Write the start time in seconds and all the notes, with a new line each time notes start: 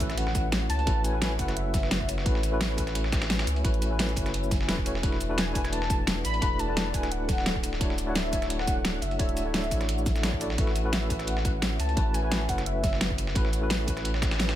Already playing: A1 F#4 B4 C#5 E5 F#5, impact
0.00 A3 C#4 E4 F#4 B4, kick, closed hi-hat, open hi-hat, cabasa
0.10 cross-stick, snare, closed hi-hat
0.18 F#5, closed hi-hat
0.27 cross-stick, snare
0.35 kick, closed hi-hat, cabasa
0.52 snare, closed hi-hat
0.69 C#2 A5, closed hi-hat, open hi-hat, cabasa
0.79 closed hi-hat
0.86 A1 A3 C#4 E4 F#4 B4, kick, closed hi-hat
1.04 G#5, closed hi-hat, cabasa
1.13 A3 C#4 E4 F#4 B4
1.22 snare, closed hi-hat
1.37 F#1 A3 C#4 E4 F#4 F#5, kick, closed hi-hat, open hi-hat, cabasa
1.41 B4
1.48 cross-stick, snare, closed hi-hat
1.56 E5, closed hi-hat
1.74 kick, snare, closed hi-hat, cabasa
1.83 snare
1.91 snare, closed hi-hat
2.00 kick, cross-stick
2.09 closed hi-hat, open hi-hat, cabasa
2.18 snare
2.25 A1 A3 C#4 E4 F#4 B4 G#5, kick, closed hi-hat
2.35 snare
2.43 closed hi-hat, cabasa
2.52 A3 C#4 E4 F#4 B4
2.61 snare, closed hi-hat
2.76 A3 C#4 E4 F#4, kick, closed hi-hat, open hi-hat, cabasa
2.80 B4
2.87 cross-stick, snare, closed hi-hat
2.95 closed hi-hat
3.04 cross-stick, snare
3.12 kick, snare, closed hi-hat, cabasa
3.22 snare, closed hi-hat
3.30 snare, closed hi-hat
3.39 snare, closed hi-hat
3.47 C#2, closed hi-hat, open hi-hat, cabasa
3.56 closed hi-hat
3.64 A1 A3 C#4 E4 F#4 B4, kick, closed hi-hat
3.74 closed hi-hat
3.82 closed hi-hat, cabasa
3.90 A3 C#4 E4 F#4 B4
3.99 snare, closed hi-hat
4.09 closed hi-hat
4.14 F#1 A3 C#4 E4 F#4, kick, closed hi-hat, open hi-hat, cabasa
4.19 B4
4.26 cross-stick, snare, closed hi-hat
4.34 closed hi-hat
4.43 cabasa
4.51 kick, snare, closed hi-hat, cabasa
4.61 snare
4.67 E1 A3 C#4 E4 F#4 B4, snare, closed hi-hat
4.78 kick, cross-stick
4.85 E1 A3 C#4 E4 F#4 C#5, closed hi-hat, open hi-hat, cabasa
4.95 snare
5.02 E1 A3 D4 E4 F#4 A4 B4 D5 F#5, kick, closed hi-hat
5.12 snare
5.20 closed hi-hat, cabasa
5.29 A3 D4 E4 F#4 B4
5.38 G#5, snare, closed hi-hat
5.53 A3 D4 E4 F#4, kick, closed hi-hat, open hi-hat, cabasa
5.57 B4
5.64 cross-stick, snare, closed hi-hat
5.73 A5, closed hi-hat
5.82 cross-stick, snare
5.90 kick, closed hi-hat, cabasa
6.07 snare, closed hi-hat
6.25 A1 B5, closed hi-hat, open hi-hat, cabasa
6.34 closed hi-hat
6.41 E1 A3 D4 E4 F#4 B4, kick, closed hi-hat
6.59 A5, closed hi-hat, cabasa
6.68 A3 D4 E4 F#4 B4
6.77 snare, closed hi-hat
6.92 D1 A3 D4 E4 F#4 G#5, kick, closed hi-hat, open hi-hat, cabasa
6.96 B4
7.03 cross-stick, snare, closed hi-hat
7.12 F#5, closed hi-hat
7.29 kick, snare, closed hi-hat, cabasa
7.38 snare
7.46 snare, closed hi-hat
7.55 kick, cross-stick
7.63 closed hi-hat, open hi-hat, cabasa
7.73 snare
7.80 D1 A3 D4 E4 F#4 C#5 E5, kick, closed hi-hat
7.90 snare
7.98 closed hi-hat, cabasa
8.06 A3 D4 E4 F#4 C#5 F#5
8.15 E5, snare, closed hi-hat
8.31 A3 D4 E4 F#4, kick, closed hi-hat, open hi-hat, cabasa
8.35 C#5
8.42 cross-stick, snare, closed hi-hat
8.50 F#5, closed hi-hat
8.59 cross-stick, snare
8.67 kick, closed hi-hat, cabasa
8.85 snare, closed hi-hat
9.02 F#1 E5, closed hi-hat, open hi-hat, cabasa
9.11 closed hi-hat
9.19 D1 A3 D4 E4 F#4 C#5, kick, closed hi-hat
9.29 closed hi-hat
9.37 closed hi-hat, cabasa
9.45 A3 D4 E4 F#4 C#5
9.54 snare, closed hi-hat
9.63 cabasa
9.69 A1 A3 D4 E4 F#4, kick, closed hi-hat, open hi-hat, cabasa
9.74 C#5
9.81 cross-stick, snare, closed hi-hat
9.89 closed hi-hat
9.98 cabasa
10.06 A1, kick, snare, closed hi-hat, cabasa
10.16 snare, cabasa
10.22 A3 D4 E4 F#4 C#5, snare, closed hi-hat
10.33 kick, cross-stick
10.40 A3 D4 E4 F#4 D5, closed hi-hat, open hi-hat, cabasa
10.50 snare
10.57 A1 A3 C#4 E4 F#4 B4, kick, closed hi-hat
10.67 snare
10.75 closed hi-hat, cabasa
10.84 A3 C#4 E4 F#4 B4
10.93 E5, snare, closed hi-hat
11.08 A3 C#4 E4 F#4, kick, closed hi-hat, open hi-hat, cabasa
11.12 B4
11.19 cross-stick, snare, closed hi-hat
11.27 F#5, closed hi-hat
11.37 cross-stick, snare
11.45 kick, closed hi-hat, cabasa
11.62 snare, closed hi-hat
11.80 C#2 A5, closed hi-hat, open hi-hat, cabasa
11.89 closed hi-hat
11.96 A1 A3 C#4 E4 F#4 B4, kick, closed hi-hat
12.14 G#5, closed hi-hat, cabasa
12.22 A3 C#4 E4 F#4 B4
12.32 snare, closed hi-hat
12.47 F#1 A3 C#4 E4 F#4 F#5, kick, closed hi-hat, open hi-hat, cabasa
12.51 B4
12.58 cross-stick, snare, closed hi-hat
12.66 E5, closed hi-hat
12.84 kick, snare, closed hi-hat, cabasa
12.93 snare
13.01 snare, closed hi-hat
13.10 kick, cross-stick
13.18 closed hi-hat, open hi-hat, cabasa
13.27 snare
13.34 A1 A3 C#4 E4 F#4 B4 G#5, kick, closed hi-hat
13.45 snare
13.53 closed hi-hat, cabasa
13.61 A3 C#4 E4 F#4 B4
13.70 snare, closed hi-hat
13.86 A3 C#4 E4 F#4, kick, closed hi-hat, open hi-hat, cabasa
13.90 B4
13.97 cross-stick, snare, closed hi-hat
14.05 closed hi-hat
14.14 cross-stick, snare
14.22 kick, snare, closed hi-hat, cabasa
14.31 snare, closed hi-hat
14.39 snare, closed hi-hat
14.49 snare, closed hi-hat